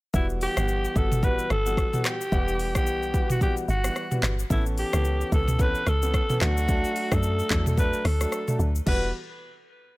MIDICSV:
0, 0, Header, 1, 5, 480
1, 0, Start_track
1, 0, Tempo, 545455
1, 122, Time_signature, 4, 2, 24, 8
1, 8774, End_track
2, 0, Start_track
2, 0, Title_t, "Alto saxophone"
2, 0, Program_c, 0, 65
2, 135, Note_on_c, 0, 64, 92
2, 240, Note_off_c, 0, 64, 0
2, 376, Note_on_c, 0, 67, 110
2, 854, Note_on_c, 0, 69, 104
2, 867, Note_off_c, 0, 67, 0
2, 1092, Note_on_c, 0, 71, 110
2, 1105, Note_off_c, 0, 69, 0
2, 1327, Note_off_c, 0, 71, 0
2, 1334, Note_on_c, 0, 69, 115
2, 1815, Note_on_c, 0, 67, 111
2, 1828, Note_off_c, 0, 69, 0
2, 2428, Note_off_c, 0, 67, 0
2, 2434, Note_on_c, 0, 67, 101
2, 2875, Note_off_c, 0, 67, 0
2, 2916, Note_on_c, 0, 66, 82
2, 3003, Note_off_c, 0, 66, 0
2, 3016, Note_on_c, 0, 67, 90
2, 3121, Note_off_c, 0, 67, 0
2, 3256, Note_on_c, 0, 66, 92
2, 3696, Note_off_c, 0, 66, 0
2, 3978, Note_on_c, 0, 64, 90
2, 4083, Note_off_c, 0, 64, 0
2, 4218, Note_on_c, 0, 67, 109
2, 4657, Note_off_c, 0, 67, 0
2, 4696, Note_on_c, 0, 69, 107
2, 4938, Note_on_c, 0, 71, 115
2, 4951, Note_off_c, 0, 69, 0
2, 5177, Note_on_c, 0, 69, 114
2, 5191, Note_off_c, 0, 71, 0
2, 5650, Note_off_c, 0, 69, 0
2, 5657, Note_on_c, 0, 66, 101
2, 6277, Note_on_c, 0, 69, 105
2, 6290, Note_off_c, 0, 66, 0
2, 6749, Note_off_c, 0, 69, 0
2, 6754, Note_on_c, 0, 69, 84
2, 6842, Note_off_c, 0, 69, 0
2, 6856, Note_on_c, 0, 71, 103
2, 7096, Note_on_c, 0, 69, 95
2, 7110, Note_off_c, 0, 71, 0
2, 7569, Note_off_c, 0, 69, 0
2, 7814, Note_on_c, 0, 71, 90
2, 8032, Note_off_c, 0, 71, 0
2, 8774, End_track
3, 0, Start_track
3, 0, Title_t, "Grand piano"
3, 0, Program_c, 1, 0
3, 118, Note_on_c, 1, 52, 92
3, 120, Note_on_c, 1, 55, 84
3, 123, Note_on_c, 1, 59, 87
3, 123, Note_on_c, 1, 66, 103
3, 466, Note_off_c, 1, 52, 0
3, 467, Note_off_c, 1, 55, 0
3, 468, Note_off_c, 1, 59, 0
3, 469, Note_off_c, 1, 66, 0
3, 496, Note_on_c, 1, 52, 80
3, 498, Note_on_c, 1, 55, 70
3, 500, Note_on_c, 1, 59, 74
3, 501, Note_on_c, 1, 78, 89
3, 815, Note_off_c, 1, 52, 0
3, 816, Note_off_c, 1, 55, 0
3, 817, Note_off_c, 1, 59, 0
3, 818, Note_off_c, 1, 78, 0
3, 838, Note_on_c, 1, 52, 73
3, 840, Note_on_c, 1, 55, 69
3, 842, Note_on_c, 1, 59, 68
3, 843, Note_on_c, 1, 66, 81
3, 1064, Note_off_c, 1, 52, 0
3, 1065, Note_off_c, 1, 55, 0
3, 1066, Note_off_c, 1, 59, 0
3, 1067, Note_off_c, 1, 66, 0
3, 1078, Note_on_c, 1, 52, 90
3, 1079, Note_on_c, 1, 55, 87
3, 1081, Note_on_c, 1, 59, 83
3, 1082, Note_on_c, 1, 66, 106
3, 1265, Note_off_c, 1, 52, 0
3, 1266, Note_off_c, 1, 55, 0
3, 1267, Note_off_c, 1, 59, 0
3, 1268, Note_off_c, 1, 66, 0
3, 1457, Note_on_c, 1, 52, 79
3, 1457, Note_on_c, 1, 55, 70
3, 1460, Note_on_c, 1, 59, 74
3, 1462, Note_on_c, 1, 66, 85
3, 1624, Note_off_c, 1, 52, 0
3, 1624, Note_off_c, 1, 55, 0
3, 1625, Note_off_c, 1, 59, 0
3, 1626, Note_off_c, 1, 66, 0
3, 1696, Note_on_c, 1, 52, 77
3, 1697, Note_on_c, 1, 55, 72
3, 1699, Note_on_c, 1, 59, 72
3, 1701, Note_on_c, 1, 66, 83
3, 1863, Note_off_c, 1, 52, 0
3, 1864, Note_off_c, 1, 55, 0
3, 1865, Note_off_c, 1, 59, 0
3, 1866, Note_off_c, 1, 66, 0
3, 2038, Note_on_c, 1, 52, 95
3, 2041, Note_on_c, 1, 55, 90
3, 2041, Note_on_c, 1, 59, 88
3, 2043, Note_on_c, 1, 78, 110
3, 2386, Note_off_c, 1, 52, 0
3, 2387, Note_off_c, 1, 55, 0
3, 2388, Note_off_c, 1, 59, 0
3, 2388, Note_off_c, 1, 78, 0
3, 2418, Note_on_c, 1, 52, 82
3, 2419, Note_on_c, 1, 55, 77
3, 2422, Note_on_c, 1, 59, 72
3, 2424, Note_on_c, 1, 78, 87
3, 2736, Note_off_c, 1, 52, 0
3, 2737, Note_off_c, 1, 55, 0
3, 2738, Note_off_c, 1, 59, 0
3, 2739, Note_off_c, 1, 78, 0
3, 2758, Note_on_c, 1, 52, 72
3, 2760, Note_on_c, 1, 55, 68
3, 2762, Note_on_c, 1, 59, 70
3, 2763, Note_on_c, 1, 66, 79
3, 2984, Note_off_c, 1, 52, 0
3, 2985, Note_off_c, 1, 55, 0
3, 2986, Note_off_c, 1, 59, 0
3, 2987, Note_off_c, 1, 66, 0
3, 2998, Note_on_c, 1, 52, 96
3, 3000, Note_on_c, 1, 55, 88
3, 3002, Note_on_c, 1, 59, 87
3, 3004, Note_on_c, 1, 66, 105
3, 3185, Note_off_c, 1, 52, 0
3, 3186, Note_off_c, 1, 55, 0
3, 3187, Note_off_c, 1, 59, 0
3, 3188, Note_off_c, 1, 66, 0
3, 3380, Note_on_c, 1, 52, 80
3, 3381, Note_on_c, 1, 55, 70
3, 3384, Note_on_c, 1, 59, 69
3, 3385, Note_on_c, 1, 66, 86
3, 3545, Note_off_c, 1, 52, 0
3, 3546, Note_off_c, 1, 55, 0
3, 3547, Note_off_c, 1, 59, 0
3, 3548, Note_off_c, 1, 66, 0
3, 3618, Note_on_c, 1, 52, 76
3, 3621, Note_on_c, 1, 55, 72
3, 3623, Note_on_c, 1, 59, 72
3, 3624, Note_on_c, 1, 66, 88
3, 3784, Note_off_c, 1, 52, 0
3, 3786, Note_off_c, 1, 55, 0
3, 3786, Note_off_c, 1, 59, 0
3, 3787, Note_off_c, 1, 66, 0
3, 3959, Note_on_c, 1, 52, 94
3, 3961, Note_on_c, 1, 59, 87
3, 3963, Note_on_c, 1, 61, 90
3, 3964, Note_on_c, 1, 69, 106
3, 4306, Note_off_c, 1, 52, 0
3, 4308, Note_off_c, 1, 59, 0
3, 4309, Note_off_c, 1, 61, 0
3, 4309, Note_off_c, 1, 69, 0
3, 4339, Note_on_c, 1, 52, 84
3, 4341, Note_on_c, 1, 59, 75
3, 4343, Note_on_c, 1, 61, 73
3, 4344, Note_on_c, 1, 69, 88
3, 4657, Note_off_c, 1, 52, 0
3, 4658, Note_off_c, 1, 59, 0
3, 4659, Note_off_c, 1, 61, 0
3, 4660, Note_off_c, 1, 69, 0
3, 4682, Note_on_c, 1, 52, 79
3, 4684, Note_on_c, 1, 59, 67
3, 4686, Note_on_c, 1, 61, 66
3, 4687, Note_on_c, 1, 69, 79
3, 4906, Note_off_c, 1, 52, 0
3, 4907, Note_off_c, 1, 59, 0
3, 4908, Note_off_c, 1, 61, 0
3, 4908, Note_off_c, 1, 69, 0
3, 4920, Note_on_c, 1, 52, 97
3, 4921, Note_on_c, 1, 59, 90
3, 4923, Note_on_c, 1, 61, 90
3, 4924, Note_on_c, 1, 69, 109
3, 5106, Note_off_c, 1, 52, 0
3, 5107, Note_off_c, 1, 59, 0
3, 5108, Note_off_c, 1, 61, 0
3, 5109, Note_off_c, 1, 69, 0
3, 5300, Note_on_c, 1, 52, 78
3, 5301, Note_on_c, 1, 59, 73
3, 5303, Note_on_c, 1, 61, 69
3, 5305, Note_on_c, 1, 69, 84
3, 5465, Note_off_c, 1, 52, 0
3, 5466, Note_off_c, 1, 59, 0
3, 5466, Note_off_c, 1, 61, 0
3, 5468, Note_off_c, 1, 69, 0
3, 5538, Note_on_c, 1, 52, 79
3, 5539, Note_on_c, 1, 59, 72
3, 5542, Note_on_c, 1, 61, 71
3, 5544, Note_on_c, 1, 69, 85
3, 5632, Note_off_c, 1, 69, 0
3, 5640, Note_on_c, 1, 54, 94
3, 5642, Note_on_c, 1, 57, 88
3, 5644, Note_on_c, 1, 62, 87
3, 5645, Note_on_c, 1, 69, 101
3, 5704, Note_off_c, 1, 52, 0
3, 5705, Note_off_c, 1, 59, 0
3, 5706, Note_off_c, 1, 61, 0
3, 5865, Note_off_c, 1, 54, 0
3, 5866, Note_off_c, 1, 57, 0
3, 5867, Note_off_c, 1, 62, 0
3, 5868, Note_off_c, 1, 69, 0
3, 5880, Note_on_c, 1, 54, 95
3, 5881, Note_on_c, 1, 57, 86
3, 5883, Note_on_c, 1, 62, 87
3, 5885, Note_on_c, 1, 69, 107
3, 6227, Note_off_c, 1, 54, 0
3, 6228, Note_off_c, 1, 57, 0
3, 6228, Note_off_c, 1, 62, 0
3, 6229, Note_off_c, 1, 69, 0
3, 6259, Note_on_c, 1, 54, 79
3, 6261, Note_on_c, 1, 57, 77
3, 6263, Note_on_c, 1, 62, 75
3, 6265, Note_on_c, 1, 69, 88
3, 6577, Note_off_c, 1, 54, 0
3, 6578, Note_off_c, 1, 57, 0
3, 6579, Note_off_c, 1, 62, 0
3, 6580, Note_off_c, 1, 69, 0
3, 6601, Note_on_c, 1, 54, 78
3, 6601, Note_on_c, 1, 57, 70
3, 6603, Note_on_c, 1, 62, 70
3, 6606, Note_on_c, 1, 69, 78
3, 6826, Note_off_c, 1, 54, 0
3, 6826, Note_off_c, 1, 57, 0
3, 6827, Note_off_c, 1, 62, 0
3, 6828, Note_off_c, 1, 69, 0
3, 6840, Note_on_c, 1, 54, 92
3, 6841, Note_on_c, 1, 57, 83
3, 6843, Note_on_c, 1, 62, 89
3, 6845, Note_on_c, 1, 69, 103
3, 7027, Note_off_c, 1, 54, 0
3, 7027, Note_off_c, 1, 57, 0
3, 7028, Note_off_c, 1, 62, 0
3, 7029, Note_off_c, 1, 69, 0
3, 7219, Note_on_c, 1, 54, 79
3, 7221, Note_on_c, 1, 57, 71
3, 7221, Note_on_c, 1, 62, 69
3, 7224, Note_on_c, 1, 69, 84
3, 7385, Note_off_c, 1, 54, 0
3, 7386, Note_off_c, 1, 57, 0
3, 7386, Note_off_c, 1, 62, 0
3, 7387, Note_off_c, 1, 69, 0
3, 7457, Note_on_c, 1, 54, 74
3, 7459, Note_on_c, 1, 57, 74
3, 7461, Note_on_c, 1, 62, 71
3, 7462, Note_on_c, 1, 69, 89
3, 7624, Note_off_c, 1, 54, 0
3, 7624, Note_off_c, 1, 57, 0
3, 7626, Note_off_c, 1, 62, 0
3, 7626, Note_off_c, 1, 69, 0
3, 7796, Note_on_c, 1, 52, 92
3, 7798, Note_on_c, 1, 55, 80
3, 7802, Note_on_c, 1, 59, 79
3, 7805, Note_on_c, 1, 66, 98
3, 7985, Note_off_c, 1, 52, 0
3, 7986, Note_off_c, 1, 55, 0
3, 7988, Note_off_c, 1, 59, 0
3, 7990, Note_off_c, 1, 66, 0
3, 8774, End_track
4, 0, Start_track
4, 0, Title_t, "Log drum bass"
4, 0, Program_c, 2, 39
4, 122, Note_on_c, 2, 28, 107
4, 420, Note_off_c, 2, 28, 0
4, 501, Note_on_c, 2, 31, 91
4, 769, Note_off_c, 2, 31, 0
4, 842, Note_on_c, 2, 31, 91
4, 1219, Note_off_c, 2, 31, 0
4, 1322, Note_on_c, 2, 31, 89
4, 1620, Note_off_c, 2, 31, 0
4, 2042, Note_on_c, 2, 28, 110
4, 2422, Note_on_c, 2, 35, 93
4, 2435, Note_off_c, 2, 28, 0
4, 2762, Note_on_c, 2, 33, 95
4, 2775, Note_off_c, 2, 35, 0
4, 3139, Note_off_c, 2, 33, 0
4, 3241, Note_on_c, 2, 31, 95
4, 3430, Note_off_c, 2, 31, 0
4, 3721, Note_on_c, 2, 31, 102
4, 3910, Note_off_c, 2, 31, 0
4, 3962, Note_on_c, 2, 33, 108
4, 4260, Note_off_c, 2, 33, 0
4, 4342, Note_on_c, 2, 37, 94
4, 4610, Note_off_c, 2, 37, 0
4, 4682, Note_on_c, 2, 37, 105
4, 5059, Note_off_c, 2, 37, 0
4, 5163, Note_on_c, 2, 37, 85
4, 5460, Note_off_c, 2, 37, 0
4, 5644, Note_on_c, 2, 38, 101
4, 6020, Note_off_c, 2, 38, 0
4, 6263, Note_on_c, 2, 42, 100
4, 6530, Note_off_c, 2, 42, 0
4, 6604, Note_on_c, 2, 40, 92
4, 6980, Note_off_c, 2, 40, 0
4, 7081, Note_on_c, 2, 38, 85
4, 7270, Note_off_c, 2, 38, 0
4, 7561, Note_on_c, 2, 38, 91
4, 7750, Note_off_c, 2, 38, 0
4, 7803, Note_on_c, 2, 28, 95
4, 8026, Note_off_c, 2, 28, 0
4, 8774, End_track
5, 0, Start_track
5, 0, Title_t, "Drums"
5, 122, Note_on_c, 9, 36, 117
5, 122, Note_on_c, 9, 82, 84
5, 210, Note_off_c, 9, 36, 0
5, 210, Note_off_c, 9, 82, 0
5, 260, Note_on_c, 9, 82, 58
5, 348, Note_off_c, 9, 82, 0
5, 363, Note_on_c, 9, 46, 50
5, 363, Note_on_c, 9, 82, 50
5, 451, Note_off_c, 9, 46, 0
5, 451, Note_off_c, 9, 82, 0
5, 501, Note_on_c, 9, 37, 108
5, 502, Note_on_c, 9, 82, 89
5, 589, Note_off_c, 9, 37, 0
5, 590, Note_off_c, 9, 82, 0
5, 601, Note_on_c, 9, 82, 81
5, 689, Note_off_c, 9, 82, 0
5, 743, Note_on_c, 9, 82, 50
5, 831, Note_off_c, 9, 82, 0
5, 842, Note_on_c, 9, 36, 98
5, 843, Note_on_c, 9, 82, 56
5, 930, Note_off_c, 9, 36, 0
5, 931, Note_off_c, 9, 82, 0
5, 982, Note_on_c, 9, 45, 92
5, 986, Note_on_c, 9, 82, 89
5, 1070, Note_off_c, 9, 45, 0
5, 1074, Note_off_c, 9, 82, 0
5, 1081, Note_on_c, 9, 36, 109
5, 1082, Note_on_c, 9, 82, 65
5, 1169, Note_off_c, 9, 36, 0
5, 1170, Note_off_c, 9, 82, 0
5, 1220, Note_on_c, 9, 82, 56
5, 1308, Note_off_c, 9, 82, 0
5, 1322, Note_on_c, 9, 37, 98
5, 1323, Note_on_c, 9, 82, 51
5, 1410, Note_off_c, 9, 37, 0
5, 1411, Note_off_c, 9, 82, 0
5, 1462, Note_on_c, 9, 82, 98
5, 1550, Note_off_c, 9, 82, 0
5, 1560, Note_on_c, 9, 36, 95
5, 1565, Note_on_c, 9, 82, 76
5, 1566, Note_on_c, 9, 37, 89
5, 1648, Note_off_c, 9, 36, 0
5, 1653, Note_off_c, 9, 82, 0
5, 1654, Note_off_c, 9, 37, 0
5, 1702, Note_on_c, 9, 45, 97
5, 1702, Note_on_c, 9, 82, 57
5, 1790, Note_off_c, 9, 45, 0
5, 1790, Note_off_c, 9, 82, 0
5, 1805, Note_on_c, 9, 82, 51
5, 1806, Note_on_c, 9, 37, 96
5, 1806, Note_on_c, 9, 39, 99
5, 1893, Note_off_c, 9, 82, 0
5, 1894, Note_off_c, 9, 37, 0
5, 1894, Note_off_c, 9, 39, 0
5, 1945, Note_on_c, 9, 82, 87
5, 2033, Note_off_c, 9, 82, 0
5, 2042, Note_on_c, 9, 36, 115
5, 2043, Note_on_c, 9, 82, 84
5, 2130, Note_off_c, 9, 36, 0
5, 2131, Note_off_c, 9, 82, 0
5, 2183, Note_on_c, 9, 82, 58
5, 2271, Note_off_c, 9, 82, 0
5, 2283, Note_on_c, 9, 46, 52
5, 2283, Note_on_c, 9, 82, 48
5, 2371, Note_off_c, 9, 46, 0
5, 2371, Note_off_c, 9, 82, 0
5, 2421, Note_on_c, 9, 37, 114
5, 2421, Note_on_c, 9, 82, 90
5, 2422, Note_on_c, 9, 36, 95
5, 2509, Note_off_c, 9, 37, 0
5, 2509, Note_off_c, 9, 82, 0
5, 2510, Note_off_c, 9, 36, 0
5, 2521, Note_on_c, 9, 82, 85
5, 2609, Note_off_c, 9, 82, 0
5, 2663, Note_on_c, 9, 82, 50
5, 2751, Note_off_c, 9, 82, 0
5, 2762, Note_on_c, 9, 36, 98
5, 2763, Note_on_c, 9, 82, 53
5, 2850, Note_off_c, 9, 36, 0
5, 2851, Note_off_c, 9, 82, 0
5, 2901, Note_on_c, 9, 45, 100
5, 2905, Note_on_c, 9, 82, 89
5, 2989, Note_off_c, 9, 45, 0
5, 2993, Note_off_c, 9, 82, 0
5, 3001, Note_on_c, 9, 36, 105
5, 3003, Note_on_c, 9, 82, 69
5, 3089, Note_off_c, 9, 36, 0
5, 3091, Note_off_c, 9, 82, 0
5, 3140, Note_on_c, 9, 82, 54
5, 3228, Note_off_c, 9, 82, 0
5, 3243, Note_on_c, 9, 82, 51
5, 3331, Note_off_c, 9, 82, 0
5, 3382, Note_on_c, 9, 37, 93
5, 3382, Note_on_c, 9, 82, 96
5, 3470, Note_off_c, 9, 37, 0
5, 3470, Note_off_c, 9, 82, 0
5, 3483, Note_on_c, 9, 82, 73
5, 3484, Note_on_c, 9, 37, 88
5, 3571, Note_off_c, 9, 82, 0
5, 3572, Note_off_c, 9, 37, 0
5, 3620, Note_on_c, 9, 82, 57
5, 3621, Note_on_c, 9, 45, 91
5, 3708, Note_off_c, 9, 82, 0
5, 3709, Note_off_c, 9, 45, 0
5, 3723, Note_on_c, 9, 82, 52
5, 3724, Note_on_c, 9, 37, 99
5, 3724, Note_on_c, 9, 39, 99
5, 3811, Note_off_c, 9, 82, 0
5, 3812, Note_off_c, 9, 37, 0
5, 3812, Note_off_c, 9, 39, 0
5, 3864, Note_on_c, 9, 82, 91
5, 3952, Note_off_c, 9, 82, 0
5, 3962, Note_on_c, 9, 36, 115
5, 3963, Note_on_c, 9, 82, 84
5, 4050, Note_off_c, 9, 36, 0
5, 4051, Note_off_c, 9, 82, 0
5, 4102, Note_on_c, 9, 82, 56
5, 4190, Note_off_c, 9, 82, 0
5, 4203, Note_on_c, 9, 46, 50
5, 4203, Note_on_c, 9, 82, 50
5, 4291, Note_off_c, 9, 46, 0
5, 4291, Note_off_c, 9, 82, 0
5, 4340, Note_on_c, 9, 37, 111
5, 4341, Note_on_c, 9, 82, 94
5, 4428, Note_off_c, 9, 37, 0
5, 4429, Note_off_c, 9, 82, 0
5, 4441, Note_on_c, 9, 82, 84
5, 4529, Note_off_c, 9, 82, 0
5, 4584, Note_on_c, 9, 82, 49
5, 4672, Note_off_c, 9, 82, 0
5, 4683, Note_on_c, 9, 36, 101
5, 4683, Note_on_c, 9, 82, 56
5, 4771, Note_off_c, 9, 36, 0
5, 4771, Note_off_c, 9, 82, 0
5, 4820, Note_on_c, 9, 45, 98
5, 4824, Note_on_c, 9, 82, 91
5, 4908, Note_off_c, 9, 45, 0
5, 4912, Note_off_c, 9, 82, 0
5, 4921, Note_on_c, 9, 36, 109
5, 4921, Note_on_c, 9, 82, 66
5, 5009, Note_off_c, 9, 36, 0
5, 5009, Note_off_c, 9, 82, 0
5, 5058, Note_on_c, 9, 82, 57
5, 5146, Note_off_c, 9, 82, 0
5, 5161, Note_on_c, 9, 37, 93
5, 5162, Note_on_c, 9, 82, 51
5, 5249, Note_off_c, 9, 37, 0
5, 5250, Note_off_c, 9, 82, 0
5, 5302, Note_on_c, 9, 82, 101
5, 5390, Note_off_c, 9, 82, 0
5, 5400, Note_on_c, 9, 36, 93
5, 5403, Note_on_c, 9, 37, 95
5, 5403, Note_on_c, 9, 82, 80
5, 5488, Note_off_c, 9, 36, 0
5, 5491, Note_off_c, 9, 37, 0
5, 5491, Note_off_c, 9, 82, 0
5, 5540, Note_on_c, 9, 82, 57
5, 5541, Note_on_c, 9, 45, 95
5, 5628, Note_off_c, 9, 82, 0
5, 5629, Note_off_c, 9, 45, 0
5, 5642, Note_on_c, 9, 82, 52
5, 5643, Note_on_c, 9, 37, 104
5, 5643, Note_on_c, 9, 39, 96
5, 5730, Note_off_c, 9, 82, 0
5, 5731, Note_off_c, 9, 37, 0
5, 5731, Note_off_c, 9, 39, 0
5, 5784, Note_on_c, 9, 82, 90
5, 5872, Note_off_c, 9, 82, 0
5, 5882, Note_on_c, 9, 82, 79
5, 5883, Note_on_c, 9, 36, 116
5, 5970, Note_off_c, 9, 82, 0
5, 5971, Note_off_c, 9, 36, 0
5, 6022, Note_on_c, 9, 82, 57
5, 6110, Note_off_c, 9, 82, 0
5, 6123, Note_on_c, 9, 46, 49
5, 6123, Note_on_c, 9, 82, 51
5, 6211, Note_off_c, 9, 46, 0
5, 6211, Note_off_c, 9, 82, 0
5, 6262, Note_on_c, 9, 37, 110
5, 6263, Note_on_c, 9, 36, 96
5, 6263, Note_on_c, 9, 82, 89
5, 6350, Note_off_c, 9, 37, 0
5, 6351, Note_off_c, 9, 36, 0
5, 6351, Note_off_c, 9, 82, 0
5, 6361, Note_on_c, 9, 82, 86
5, 6449, Note_off_c, 9, 82, 0
5, 6503, Note_on_c, 9, 82, 52
5, 6591, Note_off_c, 9, 82, 0
5, 6603, Note_on_c, 9, 36, 99
5, 6604, Note_on_c, 9, 39, 101
5, 6604, Note_on_c, 9, 82, 58
5, 6691, Note_off_c, 9, 36, 0
5, 6692, Note_off_c, 9, 39, 0
5, 6692, Note_off_c, 9, 82, 0
5, 6742, Note_on_c, 9, 45, 96
5, 6746, Note_on_c, 9, 82, 90
5, 6830, Note_off_c, 9, 45, 0
5, 6834, Note_off_c, 9, 82, 0
5, 6842, Note_on_c, 9, 36, 110
5, 6844, Note_on_c, 9, 82, 68
5, 6930, Note_off_c, 9, 36, 0
5, 6932, Note_off_c, 9, 82, 0
5, 6980, Note_on_c, 9, 82, 54
5, 7068, Note_off_c, 9, 82, 0
5, 7084, Note_on_c, 9, 37, 97
5, 7084, Note_on_c, 9, 46, 53
5, 7084, Note_on_c, 9, 82, 52
5, 7172, Note_off_c, 9, 37, 0
5, 7172, Note_off_c, 9, 46, 0
5, 7172, Note_off_c, 9, 82, 0
5, 7223, Note_on_c, 9, 37, 91
5, 7223, Note_on_c, 9, 82, 96
5, 7311, Note_off_c, 9, 37, 0
5, 7311, Note_off_c, 9, 82, 0
5, 7323, Note_on_c, 9, 37, 92
5, 7323, Note_on_c, 9, 82, 74
5, 7411, Note_off_c, 9, 37, 0
5, 7411, Note_off_c, 9, 82, 0
5, 7461, Note_on_c, 9, 82, 57
5, 7462, Note_on_c, 9, 45, 95
5, 7549, Note_off_c, 9, 82, 0
5, 7550, Note_off_c, 9, 45, 0
5, 7565, Note_on_c, 9, 82, 49
5, 7653, Note_off_c, 9, 82, 0
5, 7704, Note_on_c, 9, 82, 93
5, 7792, Note_off_c, 9, 82, 0
5, 7802, Note_on_c, 9, 36, 110
5, 7802, Note_on_c, 9, 49, 89
5, 7890, Note_off_c, 9, 36, 0
5, 7890, Note_off_c, 9, 49, 0
5, 8774, End_track
0, 0, End_of_file